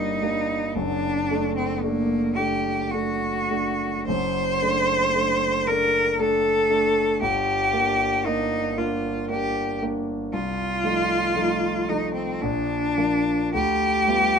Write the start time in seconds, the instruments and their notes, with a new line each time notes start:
Already playing: grand piano G3 A#3 D4, cello D#4
0.22 grand piano G3 A#3 D4
0.74 grand piano F#1 F#2, cello D4
1.31 grand piano A3 D4
1.56 cello C4
1.82 grand piano A3 D4, cello A#3
2.36 grand piano A3 D4, cello G4
2.91 grand piano A3 D4, cello F#4
3.51 grand piano A3 D4
4.06 grand piano F#1 F#2, cello C5
4.62 grand piano A3 D4
5.15 grand piano A3 D4
5.67 grand piano A3 D4, cello A#4
6.19 grand piano A3 D4, cello A4
6.70 grand piano A3 D4
7.21 grand piano G1 G2, cello G4
7.73 grand piano A#3 D4
8.25 grand piano A#3 D4, cello D#4
8.78 grand piano A#3 D4, cello F4
9.29 grand piano A#3 D4, cello G4
9.82 grand piano A#3 D4
10.33 grand piano C2, cello F4
10.84 grand piano F3 A3 D#4
11.36 grand piano F3 A3 D#4
11.89 grand piano F3 A3 D#4, cello D#4
12.14 cello C4
12.41 grand piano A#1, cello D4
12.98 grand piano F3 A#3 D4
13.54 grand piano D2, cello G4
14.07 grand piano G3 B3 F4